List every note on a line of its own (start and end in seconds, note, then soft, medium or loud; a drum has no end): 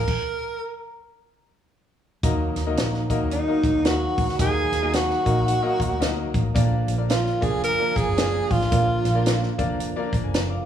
0.00 0.91 A#4 loud
0.00 0.91 A#5 medium
0.08 kick loud
0.08 crash loud
2.23 2.47 D#2 loud
2.23 3.06 D#3 medium
2.23 6.52 F#3 medium
2.23 2.60 A#3 medium
2.23 10.65 A#3 medium
2.23 2.60 D#4 medium
2.23 6.52 D#4 medium
2.23 2.60 F#4 medium
2.23 2.60 A#4 medium
2.23 2.60 D#5 loud
2.23 kick loud
2.23 closed hi-hat loud
2.56 2.77 D#2 loud
2.56 snare soft
2.56 closed hi-hat medium
2.67 3.00 A#3 medium
2.67 3.00 D#4 medium
2.67 3.00 F#4 medium
2.67 3.00 A#4 medium
2.67 3.00 D#5 medium
2.77 3.09 A#1 medium
2.77 snare loud
2.77 closed hi-hat loud
2.94 snare soft
3.10 3.37 A#3 medium
3.10 3.37 D#4 medium
3.10 3.37 F#4 medium
3.10 3.37 A#4 medium
3.10 3.37 D#5 loud
3.10 kick medium
3.10 closed hi-hat medium
3.21 3.40 D#2 medium
3.31 3.87 D#4 medium
3.31 3.82 D#5 medium
3.31 closed hi-hat medium
3.48 3.79 A#3 medium
3.48 3.79 D#4 medium
3.48 3.79 F#4 medium
3.48 3.79 A#4 medium
3.48 3.79 D#5 medium
3.64 3.72 D2 medium
3.64 kick loud
3.64 closed hi-hat medium
3.75 4.06 D#2 medium
3.85 4.30 A#3 medium
3.85 4.30 D#4 medium
3.85 4.30 F#4 medium
3.85 4.40 F#4 loud
3.85 4.30 A#4 medium
3.85 4.30 D#5 medium
3.85 4.40 F#5 medium
3.85 snare loud
3.85 closed hi-hat loud
4.18 4.34 D2 medium
4.18 kick loud
4.18 open hi-hat medium
4.29 snare soft
4.39 4.63 D#2 loud
4.39 5.22 D#3 medium
4.39 4.76 A#3 medium
4.39 4.76 D#4 medium
4.39 4.76 F#4 medium
4.39 4.96 G#4 loud
4.39 4.76 A#4 medium
4.39 4.76 D#5 medium
4.39 4.90 G#5 medium
4.39 kick loud
4.39 closed hi-hat loud
4.72 5.11 D#2 loud
4.72 snare soft
4.72 closed hi-hat medium
4.82 5.16 A#3 medium
4.82 5.16 D#4 medium
4.82 5.16 F#4 medium
4.82 5.16 A#4 medium
4.82 5.16 D#5 medium
4.93 6.35 F#4 loud
4.93 6.34 F#5 medium
4.93 snare loud
4.93 closed hi-hat loud
5.10 snare soft
5.25 5.54 A#1 loud
5.25 5.53 A#3 medium
5.25 5.53 D#4 medium
5.25 5.54 F#4 medium
5.25 5.53 A#4 medium
5.25 5.54 D#5 medium
5.25 kick medium
5.25 closed hi-hat medium
5.48 closed hi-hat medium
5.62 5.94 A#3 loud
5.62 5.94 D#4 medium
5.62 5.94 F#4 medium
5.62 5.94 A#4 medium
5.62 5.94 D#5 loud
5.80 5.88 D#2 medium
5.80 kick loud
5.80 closed hi-hat medium
5.91 6.23 D2 medium
6.00 6.46 A#3 medium
6.00 6.46 D#4 medium
6.00 6.09 F4 medium
6.00 6.46 A#4 medium
6.00 6.46 D#5 medium
6.00 snare loud
6.00 closed hi-hat medium
6.07 6.49 F#4 medium
6.34 6.50 A1 medium
6.34 kick loud
6.34 closed hi-hat medium
6.54 6.79 A#1 loud
6.54 7.38 A#2 medium
6.54 10.65 D3 medium
6.54 10.65 F3 medium
6.54 6.92 A#3 medium
6.54 6.92 D4 medium
6.54 6.92 F4 medium
6.54 6.92 A#4 medium
6.54 6.92 D5 medium
6.54 kick loud
6.54 closed hi-hat loud
6.88 7.28 A#1 loud
6.88 closed hi-hat medium
6.98 7.32 A#3 medium
6.98 7.32 D4 medium
6.98 7.32 F4 medium
6.98 7.32 A#4 medium
6.98 7.32 D5 medium
7.09 7.45 F4 medium
7.09 7.40 F5 medium
7.09 snare loud
7.09 closed hi-hat loud
7.26 snare soft
7.41 7.70 F1 loud
7.41 7.69 A#3 medium
7.41 7.70 D4 medium
7.41 7.70 F4 medium
7.41 7.63 G#4 loud
7.41 7.69 A#4 medium
7.41 7.69 D5 medium
7.41 7.64 G#5 medium
7.41 kick medium
7.41 closed hi-hat medium
7.64 7.98 A#4 loud
7.64 7.94 A#5 loud
7.64 closed hi-hat medium
7.79 8.11 A#3 medium
7.79 8.11 D4 medium
7.79 8.11 F4 medium
7.79 8.11 A#4 medium
7.79 8.11 D5 medium
7.96 8.07 G#1 loud
7.96 8.53 G#4 loud
7.96 8.51 G#5 loud
7.96 kick loud
7.96 closed hi-hat medium
8.07 8.39 F#1 loud
8.17 8.63 A#3 medium
8.17 8.63 D4 medium
8.17 8.63 F4 medium
8.17 8.63 A#4 medium
8.17 8.63 D5 medium
8.17 snare loud
8.17 closed hi-hat loud
8.51 8.66 A1 loud
8.51 9.59 F4 medium
8.51 9.59 F5 medium
8.51 kick loud
8.51 open hi-hat medium
8.61 snare soft
8.71 8.96 A#1 loud
8.71 9.54 A#2 medium
8.71 9.08 A#3 medium
8.71 9.08 D4 medium
8.71 9.08 F4 medium
8.71 9.08 A#4 medium
8.71 9.08 D5 medium
8.71 kick loud
8.71 closed hi-hat loud
9.05 9.44 A#1 medium
9.05 snare soft
9.05 closed hi-hat medium
9.15 9.48 A#3 medium
9.15 9.48 D4 medium
9.15 9.49 F4 medium
9.15 9.48 A#4 medium
9.15 9.48 D5 loud
9.26 snare loud
9.26 closed hi-hat loud
9.43 snare soft
9.58 9.87 F1 medium
9.58 9.86 A#3 medium
9.58 9.86 D4 medium
9.58 9.86 F4 medium
9.58 9.86 A#4 medium
9.58 9.86 D5 loud
9.58 kick loud
9.58 closed hi-hat medium
9.80 closed hi-hat medium
9.96 10.28 A#3 loud
9.96 10.28 D4 medium
9.96 10.28 F4 medium
9.96 10.13 A#4 medium
9.96 10.13 D5 loud
10.13 10.21 G#1 medium
10.13 kick loud
10.13 closed hi-hat medium
10.24 10.56 F#1 medium
10.24 10.34 G#5 medium
10.34 10.50 D5 medium
10.34 10.50 A#5 medium
10.34 snare loud
10.34 closed hi-hat medium
10.50 10.65 F5 medium
10.50 10.65 D6 medium